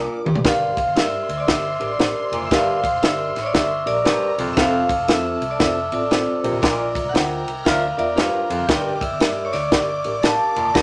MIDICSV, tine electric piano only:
0, 0, Header, 1, 2, 480
1, 0, Start_track
1, 0, Tempo, 515464
1, 415, Time_signature, 4, 2, 24, 8
1, 10077, End_track
2, 0, Start_track
2, 0, Title_t, "Tine electric piano"
2, 0, Program_c, 0, 4
2, 0, Note_on_c, 0, 62, 89
2, 0, Note_on_c, 0, 65, 82
2, 0, Note_on_c, 0, 70, 101
2, 246, Note_off_c, 0, 62, 0
2, 249, Note_off_c, 0, 65, 0
2, 251, Note_off_c, 0, 70, 0
2, 409, Note_on_c, 0, 62, 87
2, 412, Note_on_c, 0, 70, 88
2, 413, Note_on_c, 0, 67, 83
2, 414, Note_on_c, 0, 43, 61
2, 417, Note_on_c, 0, 74, 102
2, 726, Note_off_c, 0, 62, 0
2, 727, Note_off_c, 0, 67, 0
2, 727, Note_off_c, 0, 70, 0
2, 730, Note_off_c, 0, 74, 0
2, 892, Note_on_c, 0, 62, 74
2, 892, Note_on_c, 0, 67, 71
2, 896, Note_on_c, 0, 74, 84
2, 897, Note_on_c, 0, 70, 67
2, 1165, Note_off_c, 0, 43, 0
2, 1207, Note_off_c, 0, 62, 0
2, 1207, Note_off_c, 0, 67, 0
2, 1209, Note_off_c, 0, 70, 0
2, 1209, Note_off_c, 0, 74, 0
2, 1371, Note_on_c, 0, 62, 67
2, 1372, Note_on_c, 0, 67, 66
2, 1375, Note_on_c, 0, 70, 64
2, 1375, Note_on_c, 0, 74, 77
2, 1532, Note_off_c, 0, 62, 0
2, 1532, Note_off_c, 0, 67, 0
2, 1534, Note_off_c, 0, 70, 0
2, 1534, Note_off_c, 0, 74, 0
2, 1677, Note_on_c, 0, 62, 72
2, 1678, Note_on_c, 0, 67, 64
2, 1681, Note_on_c, 0, 70, 63
2, 1685, Note_on_c, 0, 74, 77
2, 1769, Note_off_c, 0, 62, 0
2, 1770, Note_off_c, 0, 67, 0
2, 1771, Note_off_c, 0, 70, 0
2, 1773, Note_off_c, 0, 74, 0
2, 1852, Note_on_c, 0, 62, 77
2, 1854, Note_on_c, 0, 67, 67
2, 1856, Note_on_c, 0, 70, 72
2, 1859, Note_on_c, 0, 72, 81
2, 2167, Note_off_c, 0, 62, 0
2, 2168, Note_off_c, 0, 67, 0
2, 2169, Note_off_c, 0, 70, 0
2, 2170, Note_off_c, 0, 72, 0
2, 2338, Note_on_c, 0, 62, 92
2, 2342, Note_on_c, 0, 67, 83
2, 2343, Note_on_c, 0, 43, 61
2, 2345, Note_on_c, 0, 70, 84
2, 2348, Note_on_c, 0, 74, 102
2, 2650, Note_off_c, 0, 62, 0
2, 2652, Note_off_c, 0, 67, 0
2, 2653, Note_off_c, 0, 70, 0
2, 2655, Note_off_c, 0, 74, 0
2, 2816, Note_on_c, 0, 62, 76
2, 2818, Note_on_c, 0, 67, 66
2, 2820, Note_on_c, 0, 70, 73
2, 2821, Note_on_c, 0, 74, 85
2, 3089, Note_off_c, 0, 43, 0
2, 3129, Note_off_c, 0, 62, 0
2, 3129, Note_off_c, 0, 67, 0
2, 3131, Note_off_c, 0, 70, 0
2, 3131, Note_off_c, 0, 74, 0
2, 3292, Note_on_c, 0, 67, 70
2, 3293, Note_on_c, 0, 62, 68
2, 3294, Note_on_c, 0, 70, 62
2, 3297, Note_on_c, 0, 76, 79
2, 3453, Note_off_c, 0, 62, 0
2, 3453, Note_off_c, 0, 67, 0
2, 3453, Note_off_c, 0, 70, 0
2, 3455, Note_off_c, 0, 76, 0
2, 3594, Note_on_c, 0, 62, 71
2, 3596, Note_on_c, 0, 70, 63
2, 3597, Note_on_c, 0, 67, 66
2, 3600, Note_on_c, 0, 74, 79
2, 3688, Note_off_c, 0, 62, 0
2, 3688, Note_off_c, 0, 70, 0
2, 3689, Note_off_c, 0, 67, 0
2, 3691, Note_off_c, 0, 74, 0
2, 3765, Note_on_c, 0, 67, 69
2, 3766, Note_on_c, 0, 62, 74
2, 3771, Note_on_c, 0, 70, 71
2, 3772, Note_on_c, 0, 72, 84
2, 4083, Note_off_c, 0, 67, 0
2, 4084, Note_off_c, 0, 62, 0
2, 4086, Note_off_c, 0, 70, 0
2, 4087, Note_off_c, 0, 72, 0
2, 4244, Note_on_c, 0, 60, 94
2, 4247, Note_on_c, 0, 65, 82
2, 4250, Note_on_c, 0, 69, 86
2, 4252, Note_on_c, 0, 72, 106
2, 4563, Note_off_c, 0, 60, 0
2, 4564, Note_off_c, 0, 65, 0
2, 4565, Note_off_c, 0, 69, 0
2, 4566, Note_off_c, 0, 72, 0
2, 4731, Note_on_c, 0, 60, 75
2, 4732, Note_on_c, 0, 65, 69
2, 4736, Note_on_c, 0, 72, 87
2, 4737, Note_on_c, 0, 69, 71
2, 5046, Note_off_c, 0, 60, 0
2, 5046, Note_off_c, 0, 65, 0
2, 5048, Note_off_c, 0, 69, 0
2, 5048, Note_off_c, 0, 72, 0
2, 5208, Note_on_c, 0, 60, 71
2, 5212, Note_on_c, 0, 65, 65
2, 5212, Note_on_c, 0, 69, 65
2, 5215, Note_on_c, 0, 72, 74
2, 5370, Note_off_c, 0, 60, 0
2, 5372, Note_off_c, 0, 65, 0
2, 5372, Note_off_c, 0, 69, 0
2, 5373, Note_off_c, 0, 72, 0
2, 5514, Note_on_c, 0, 60, 67
2, 5516, Note_on_c, 0, 65, 66
2, 5519, Note_on_c, 0, 69, 67
2, 5522, Note_on_c, 0, 74, 80
2, 5607, Note_off_c, 0, 60, 0
2, 5608, Note_off_c, 0, 65, 0
2, 5610, Note_off_c, 0, 69, 0
2, 5611, Note_off_c, 0, 74, 0
2, 5689, Note_on_c, 0, 60, 75
2, 5692, Note_on_c, 0, 65, 73
2, 5693, Note_on_c, 0, 69, 72
2, 5695, Note_on_c, 0, 72, 88
2, 5992, Note_off_c, 0, 65, 0
2, 5999, Note_off_c, 0, 60, 0
2, 6000, Note_off_c, 0, 69, 0
2, 6000, Note_on_c, 0, 62, 75
2, 6002, Note_off_c, 0, 72, 0
2, 6002, Note_on_c, 0, 46, 62
2, 6003, Note_on_c, 0, 65, 68
2, 6004, Note_on_c, 0, 70, 70
2, 6006, Note_on_c, 0, 74, 83
2, 6550, Note_off_c, 0, 62, 0
2, 6551, Note_off_c, 0, 65, 0
2, 6551, Note_off_c, 0, 70, 0
2, 6552, Note_off_c, 0, 74, 0
2, 6617, Note_off_c, 0, 46, 0
2, 6648, Note_on_c, 0, 62, 76
2, 6651, Note_on_c, 0, 65, 71
2, 6652, Note_on_c, 0, 70, 70
2, 6656, Note_on_c, 0, 72, 82
2, 6964, Note_off_c, 0, 62, 0
2, 6965, Note_off_c, 0, 65, 0
2, 6966, Note_off_c, 0, 70, 0
2, 6968, Note_off_c, 0, 72, 0
2, 7126, Note_on_c, 0, 62, 67
2, 7126, Note_on_c, 0, 65, 67
2, 7130, Note_on_c, 0, 70, 64
2, 7132, Note_on_c, 0, 76, 79
2, 7288, Note_off_c, 0, 65, 0
2, 7289, Note_off_c, 0, 62, 0
2, 7291, Note_off_c, 0, 70, 0
2, 7291, Note_off_c, 0, 76, 0
2, 7428, Note_on_c, 0, 62, 71
2, 7428, Note_on_c, 0, 65, 60
2, 7428, Note_on_c, 0, 70, 65
2, 7433, Note_on_c, 0, 76, 75
2, 7523, Note_off_c, 0, 65, 0
2, 7523, Note_off_c, 0, 70, 0
2, 7524, Note_off_c, 0, 62, 0
2, 7526, Note_off_c, 0, 76, 0
2, 7599, Note_on_c, 0, 62, 73
2, 7600, Note_on_c, 0, 65, 67
2, 7604, Note_on_c, 0, 70, 68
2, 7604, Note_on_c, 0, 72, 81
2, 7919, Note_off_c, 0, 62, 0
2, 7920, Note_off_c, 0, 65, 0
2, 7921, Note_off_c, 0, 70, 0
2, 7922, Note_off_c, 0, 72, 0
2, 8086, Note_on_c, 0, 62, 93
2, 8086, Note_on_c, 0, 67, 85
2, 8087, Note_on_c, 0, 43, 59
2, 8089, Note_on_c, 0, 70, 86
2, 8091, Note_on_c, 0, 74, 100
2, 8402, Note_off_c, 0, 62, 0
2, 8402, Note_off_c, 0, 67, 0
2, 8404, Note_off_c, 0, 70, 0
2, 8405, Note_off_c, 0, 74, 0
2, 8567, Note_on_c, 0, 62, 73
2, 8568, Note_on_c, 0, 67, 70
2, 8570, Note_on_c, 0, 70, 71
2, 8573, Note_on_c, 0, 74, 81
2, 8840, Note_off_c, 0, 43, 0
2, 8883, Note_off_c, 0, 62, 0
2, 8883, Note_off_c, 0, 67, 0
2, 8884, Note_off_c, 0, 70, 0
2, 8886, Note_off_c, 0, 74, 0
2, 9043, Note_on_c, 0, 62, 68
2, 9048, Note_on_c, 0, 67, 67
2, 9048, Note_on_c, 0, 70, 69
2, 9053, Note_on_c, 0, 74, 78
2, 9207, Note_off_c, 0, 62, 0
2, 9209, Note_off_c, 0, 67, 0
2, 9209, Note_off_c, 0, 70, 0
2, 9211, Note_off_c, 0, 74, 0
2, 9358, Note_on_c, 0, 62, 71
2, 9359, Note_on_c, 0, 67, 65
2, 9359, Note_on_c, 0, 70, 66
2, 9364, Note_on_c, 0, 74, 80
2, 9448, Note_off_c, 0, 62, 0
2, 9449, Note_off_c, 0, 67, 0
2, 9449, Note_off_c, 0, 70, 0
2, 9451, Note_off_c, 0, 74, 0
2, 9528, Note_on_c, 0, 62, 73
2, 9530, Note_on_c, 0, 67, 67
2, 9534, Note_on_c, 0, 70, 73
2, 9537, Note_on_c, 0, 77, 84
2, 9843, Note_off_c, 0, 62, 0
2, 9844, Note_off_c, 0, 67, 0
2, 9846, Note_off_c, 0, 70, 0
2, 9848, Note_off_c, 0, 77, 0
2, 10006, Note_on_c, 0, 62, 90
2, 10007, Note_on_c, 0, 43, 64
2, 10008, Note_on_c, 0, 67, 87
2, 10013, Note_on_c, 0, 70, 81
2, 10013, Note_on_c, 0, 74, 102
2, 10077, Note_off_c, 0, 43, 0
2, 10077, Note_off_c, 0, 62, 0
2, 10077, Note_off_c, 0, 67, 0
2, 10077, Note_off_c, 0, 70, 0
2, 10077, Note_off_c, 0, 74, 0
2, 10077, End_track
0, 0, End_of_file